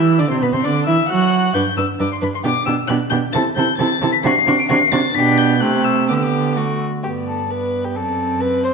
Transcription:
Already playing: cello E3, viola E4, violin E6
0.18 cello D3, viola D4, violin D5 D6
0.29 cello C3, viola C4, violin C5 C6
0.42 cello B2, viola B3, violin B4 B5
0.53 cello C3, viola C4, violin C5 C6
0.64 cello D3, viola D4, violin D5 D6
0.86 cello E3, viola E4, violin E5 E6
1.08 cello F#3, viola F#4, violin F#5 F#6
1.54 cello G2, viola D4, violin B4 G6
1.76 cello G2, viola D4, violin B4 E6
1.99 cello G2, viola D4, violin B4 D6
2.12 violin C6
2.21 cello G2, viola D4, violin B4 B5
2.35 violin C6
2.44 cello B2, viola D4, violin G4 D6
2.66 cello B2, viola D4, violin G4 E6
2.87 cello B2, viola D4, violin G4 F#6
3.10 cello B2, viola D4, violin G4 G6
3.33 cello C3, viola E4, violin A4 A6
3.56 cello C3, viola E4, violin A4 G6
3.77 cello C3, viola E4, violin A4 A6
4.01 cello C3, viola E4, violin A4
4.12 violin B6
4.24 cello C3, viola D4, violin F#4 C7
4.47 cello C3, viola D4, violin F#4
4.59 violin D7
4.69 cello C3, viola D4, violin F#4 C7
4.91 cello C3, viola D4, violin F#4 A6
5.15 cello B2, viola D4, violin G4 B6
5.38 violin G6
5.60 cello C3, viola A3, violin G4 F#6
5.84 violin E6
6.08 cello D3, viola B3, violin G4 D6
6.16 violin E6
6.23 violin D6
6.56 viola A3, violin F#4
7.03 cello G2, viola B3, violin G4 D5
7.27 violin A4
7.49 viola B3, violin B4 D5
7.85 violin G4
7.95 cello F#2, viola C4, violin A4 D5
8.41 violin B4
8.64 violin C5

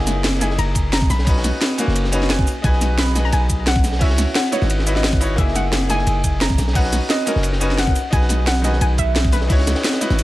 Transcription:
Already playing: 808-style bass F#1, grand piano A#3 D#4 E4 G#4, synth pluck F#5
0.07 snare, closed hi-hat, ride, shaker
0.24 snare, closed hi-hat, ride
0.33 ride
0.39 grand piano A#3 D#4 E4, synth pluck G#5, snare, closed hi-hat, ride, shaker
0.43 grand piano G#4
0.51 snare
0.58 808-style bass F#1, synth pluck A#5, closed hi-hat, ride
0.75 kick, closed hi-hat, ride, shaker
0.92 synth pluck A#5, snare, closed hi-hat, ride
1.02 kick
1.10 808-style bass B1, synth pluck B5, snare, open hi-hat, ride, shaker
1.19 snare
1.25 grand piano C#4 D#4 F#4, kick, closed hi-hat, open hi-hat
1.29 grand piano B4
1.37 snare
1.44 snare, closed hi-hat, ride, shaker
1.61 snare, closed hi-hat, ride
1.78 grand piano A#3 C#4 D#4 F#4, snare, closed hi-hat, ride, shaker
1.87 808-style bass F#1, snare
1.96 closed hi-hat, ride
2.05 snare
2.12 grand piano C#4 D#4 F#4 B4, snare, closed hi-hat, ride, shaker
2.22 snare
2.29 synth pluck G#5, snare, closed hi-hat, ride
2.39 kick
2.47 open hi-hat, ride, shaker
2.62 808-style bass B1, grand piano D#4 F#4 G#4, synth pluck G#5, kick, closed hi-hat, ride
2.66 grand piano B4
2.73 snare
2.81 snare, closed hi-hat, ride, shaker
2.98 synth pluck B5, snare, closed hi-hat, ride
3.08 ride
3.13 grand piano D#4 F#4 G#4, snare, closed hi-hat, ride, shaker
3.18 grand piano B4
3.25 synth pluck A#5, snare
3.32 808-style bass B1, synth pluck G#5, closed hi-hat, ride
3.50 kick, closed hi-hat, ride, shaker
3.66 synth pluck F#5, snare, closed hi-hat, ride
3.76 kick
3.84 snare, open hi-hat, ride, shaker
3.92 snare
3.99 808-style bass C#2, grand piano C#4 E4 F#4, synth pluck E5, kick, closed hi-hat, open hi-hat
4.03 grand piano C#5
4.10 snare
4.18 snare, closed hi-hat, ride, shaker
4.35 synth pluck F#5, snare, closed hi-hat, ride
4.52 grand piano D#4 E4 F#4 B4, synth pluck C#5, snare, closed hi-hat, ride, shaker
4.62 808-style bass G#1, snare
4.70 closed hi-hat, ride
4.79 snare
4.86 grand piano D#4 E4 F#4 B4, snare, closed hi-hat, ride, shaker
4.95 grand piano D#4 E4 F#4 D#5, snare
5.04 snare, closed hi-hat, ride
5.13 kick
5.20 grand piano D#4 E4 F#4 C#5, open hi-hat, ride, shaker
5.36 808-style bass F#1, grand piano A#3 D#4 E4, synth pluck E5, kick, closed hi-hat, ride
5.40 grand piano G#4
5.48 snare
5.55 synth pluck F#5, snare, closed hi-hat, ride, shaker
5.72 snare, closed hi-hat, ride
5.81 ride
5.87 grand piano A#3 D#4 E4, synth pluck G#5, snare, closed hi-hat, ride, shaker
5.92 grand piano G#4
5.99 snare
6.07 808-style bass F#1, closed hi-hat, ride
6.24 kick, closed hi-hat, ride, shaker
6.41 synth pluck A#5, snare, closed hi-hat, ride
6.50 kick
6.58 808-style bass B1, snare, open hi-hat, ride, shaker
6.68 snare
6.73 grand piano C#4 D#4 F#4, synth pluck F#5, kick, closed hi-hat, open hi-hat
6.77 grand piano B4
6.84 snare
6.93 snare, closed hi-hat, ride, shaker
7.09 synth pluck D#5, snare, closed hi-hat, ride
7.26 grand piano C#4 D#4 F#4 A#4, snare, closed hi-hat, ride, shaker
7.36 808-style bass F#1, snare
7.43 closed hi-hat, ride
7.53 snare
7.60 grand piano C#4 D#4 F#4 B4, snare, closed hi-hat, ride, shaker
7.70 snare
7.78 synth pluck F#5, snare, closed hi-hat, ride
7.87 kick
7.96 open hi-hat, ride, shaker
8.11 808-style bass B1, grand piano D#4 F#4 G#4, synth pluck G#5, kick, closed hi-hat, ride
8.15 grand piano B4
8.21 snare
8.29 snare, closed hi-hat, ride, shaker
8.47 synth pluck F#5, snare, closed hi-hat, ride
8.56 ride
8.62 grand piano D#3 F#4 G#4, synth pluck D#5, snare, closed hi-hat, ride, shaker
8.66 grand piano B4
8.73 snare
8.81 808-style bass B1, synth pluck G#5, closed hi-hat, ride
8.98 synth pluck E5, kick, closed hi-hat, ride, shaker
9.16 snare, closed hi-hat, ride
9.25 kick
9.32 synth pluck B4, snare, open hi-hat, ride, shaker
9.41 snare
9.48 808-style bass C#2, grand piano D#4 E4 F#4, kick, closed hi-hat, open hi-hat
9.52 grand piano C#5
9.58 snare
9.67 snare, closed hi-hat, ride, shaker
9.75 snare, ride
9.84 snare, closed hi-hat, ride
9.93 snare, ride
10.01 grand piano D#4 E4 F#4 B4, snare, closed hi-hat, ride, shaker
10.10 808-style bass G#1, snare
10.19 closed hi-hat, ride, shaker

